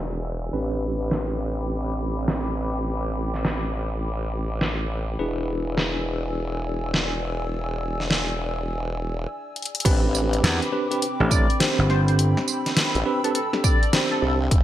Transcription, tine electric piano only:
Already playing: D4 E4 G#4 B4
0.53 C4 D4 G4 B4
5.19 D4 E4 G#4 B4
9.85 C4 D4 G4 B4
10.72 C4 D4 G4 B4
10.91 C4 D4 G4 B4
11.20 C4 D4 G4 A4
11.60 C4 D4 G4 C5
13.06 C4 D4 G4 B4
13.24 C4 D4 G4 B4
13.53 C4 D4 G4 A4
13.93 C4 D4 G4 C5

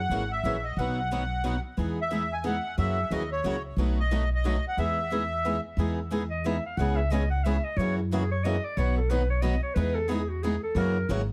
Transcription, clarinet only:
6.30 D#5
6.45 E5
6.66 F5
6.77 F#5
6.96 E5
7.11 D#5
7.30 F#5
7.44 E5
7.64 D#5
7.77 C#5
7.98 E4
8.13 G#4
8.32 C#5
8.44 D#5
8.65 D5
8.78 C#5
8.97 A4
9.10 B4
9.30 C#5
9.42 D#5
9.63 C#5
9.74 B4
9.95 A4
10.09 G#4
10.29 F#4
10.43 G#4
10.63 A4
10.78 A#4

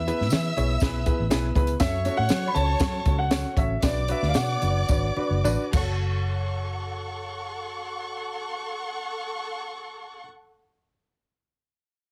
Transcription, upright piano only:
0.07 B3 E4 G#4 B4
0.32 B3 E4 G#4 B4
0.57 B3 E4 G#4 C#5
0.82 B3 E4 G#4 B4
1.06 B3 E4 G#4 B4
1.31 B3 E4 G#4 B4
1.55 B3 E4 G#4 B4
1.81 C#4 F#4 A4 C#5
2.05 C#4 F#4 A4 C#5
2.30 C#4 F#4 A4 C#5
2.55 C#4 F#4 A4 C#5
2.81 C#4 F#4 A4 C#5
3.07 C#4 F#4 A4 C#5
3.31 C#4 F#4 A4 C#5
3.57 C#4 F#4 A4 C#5
3.83 D4 F#4 B4 D5
4.09 D4 F#4 B4 D5
4.35 D4 F#4 C#5
4.62 D4 F#4 B4 D5
4.89 D4 F#4 B4 C#5
5.17 D4 F#4 B4 D5
5.44 D4 F#4 B4 D5
5.72 F#4 A4 C#5

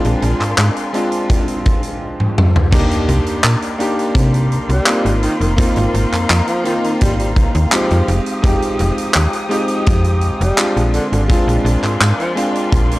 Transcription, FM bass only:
0.05 A#1
0.23 A#1
0.41 G#2
0.58 G#2
2.73 C2
3.08 C2
3.44 A#2
4.15 C3
4.69 C2
5.05 G#1
5.40 F1
5.77 G#1
5.94 G#1
6.13 F2
6.30 F2
7.02 G#1
7.36 C2
7.55 D#2
7.91 F2
8.08 F1
8.44 F1
8.80 F1
9.16 D#2
9.87 F2
10.41 F1
10.77 A#1
11.12 G#1
11.30 A#1
11.48 A#1
11.65 A#1
11.83 G#2
12.01 G#2
12.73 A#1

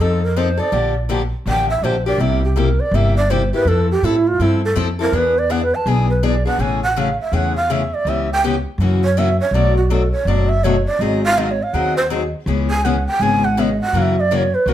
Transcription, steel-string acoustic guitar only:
0.00 F3 C4 D#4 A4
0.36 F3 C4 D#4 A4
0.57 C4 D#4 A4
0.72 D3 F3 A#3 D4 G4
1.09 D3 F3 A#3 D4 G4
1.46 D3 F3 A#3 D4 G4
1.84 D3 F3 A#3 D4 G4
2.06 A#3 D4 G4
2.20 C3 G3 A#3 E4 G4
2.56 C3 G3 A#3 E4 G4
2.94 C3 G3 A#3 E4 G4
3.30 C3 G3 A#3 E4 G4
3.53 A#3 E4 G4
3.67 F3 C4 E4 A4
4.03 F3 C4 E4 A4
4.40 F3 C4 E4 A4
4.75 F3 C4 E4 A4
4.99 C4 E4 A4
5.12 E3 B3 D4 G#4
5.50 E3 B3 D4 G#4
5.87 E3 B3 D4 G#4
6.23 E3 B3 D4 G#4
6.45 B3 D4 G#4
6.59 C#3 E3 A3 C#4 G#4
6.96 C#3 E3 A3 C#4 G#4
7.33 C#3 E3 A3 C#4 G#4
7.70 C#3 E3 A3 C#4 G#4
8.07 C#3 E3 B3 C#4 G4
8.44 C#3 E3 B3 C#4 G4
8.80 C#3 E3 A#3 C#4 F#4
9.17 C#3 E3 A#3 C#4 F#4
9.54 B2 F#3 A3 D4 F#4
9.90 B2 F#3 A3 D4 F#4
10.27 B2 F#3 A3 D4 F#4
10.64 B2 F#3 A3 D4 F#4
11.01 D#3 F#3 C4 D#4 G#4
11.37 D#3 F#3 C4 D#4 G#4
11.74 D#3 F#3 C4 D#4 G#4
12.10 D#3 F#3 C4 D#4 G#4
12.47 C#3 E3 B3 C#4 G#4
12.85 C#3 E3 B3 C#4 G#4
13.22 C#3 E3 B3 C#4 G#4
13.57 C#3 E3 B3 C#4 G#4
13.94 C#3 E3 A#3 C#4 F#4
14.31 C#3 E3 A#3 C#4 F#4
14.67 C#3 E3 A#3 C#4 F#4

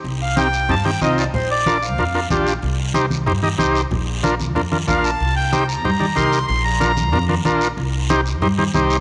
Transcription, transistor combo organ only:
0.36 C4 D#4 G4
0.69 C4 D#4 G4
0.85 C4 D#4 G4
1.02 C4 D#4 F4
1.66 D4 F4 A#4
1.99 D4 F4 A#4
2.15 D4 F4 A#4
2.31 D4 F4 G4
2.94 D#4 G4 C5
3.26 D#4 G4 C5
3.43 D#4 G4 D#5
3.58 D#4 G4 C5
4.23 D4 F4 A#4
4.55 D4 F4 A#4
4.72 D4 F4 A#4
4.87 D4 F4 A#4
5.52 D#4 G4 C5
5.85 D#4 G4 C5
6.00 D#4 G4 D5
6.16 D#4 G4 A#4
6.80 D4 F4 A#4
7.12 D4 F4 A#4
7.29 D4 F4 A#4
7.45 D4 F4 A#4
8.10 D#4 G4 C5
8.42 D#4 G4 C5
8.58 D#4 G4 C5
8.74 D#4 G4 C5

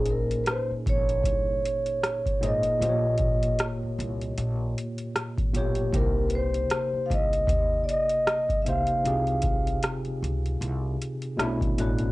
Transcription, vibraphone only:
Already playing: G#4
0.10 A#4
0.44 B4
0.52 C5
0.89 C#5
2.46 D#5
5.57 G4
5.96 A#4
6.29 B4
6.35 C5
7.06 F5
7.13 D#5
7.84 D5
7.91 D#5
8.62 E5
8.69 F5
11.80 F#4

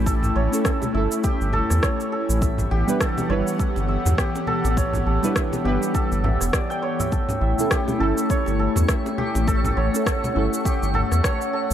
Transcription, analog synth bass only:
Already playing: A1
0.36 A1
0.94 G1
1.41 G1
1.71 E2
2.29 A1
2.71 A1
3.30 G1
3.76 G1
4.06 E2
4.64 A1
5.06 A1
5.65 G1
6.11 G1
6.24 A1
6.41 E1
7.41 A1
8.00 G1
8.47 G1
8.76 E2
9.35 A1
9.77 A1
10.36 G1
10.82 G1
11.12 E2

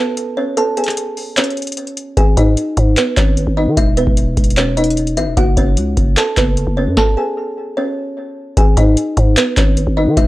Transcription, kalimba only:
Already playing: B3 B4
0.37 C#4 C#5
0.57 A4 A5
0.77 G#4 G#5
1.37 C#4 C#5
2.17 G#4 G#5
2.37 D#4 D#5
2.97 B3 B4
3.17 C#4 C#5
3.57 D#4 D#5
3.77 E4 E5
3.97 B3 B4
4.57 C#4 C#5
4.77 D#4 D#5
5.17 E4 E5
5.37 F#4 F#5
5.57 C#4 C#5
6.17 A4 A5
6.37 B3 B4
6.77 C#4 C#5
6.97 A4 A5
7.17 G#4 G#5
7.77 C#4 C#5
8.57 G#4 G#5
8.77 D#4 D#5
9.37 B3 B4
9.57 C#4 C#5
9.97 D#4 D#5
10.17 E4 E5

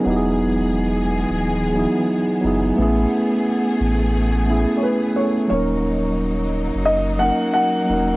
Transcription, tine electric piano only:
0.04 F#3 B3 D#4
0.08 E4 G4
0.16 G#4
1.73 F#3 B3 D#4
1.77 E4 G#4
2.41 F#3 B3 D#4
2.46 E4 G#4
2.76 A3 B3 C#4
2.81 E4 G#4
4.45 A3 B3 C#4
4.50 E4 G#4
5.15 A3 B3 C#4
5.20 E4 A4
5.48 F#3 A#3 C#4
5.53 D#4 A#4
7.18 F#3 A#3 C#4
7.23 D#4 A#4
7.84 F#3 A#3 C#4
7.89 D#4 A#4

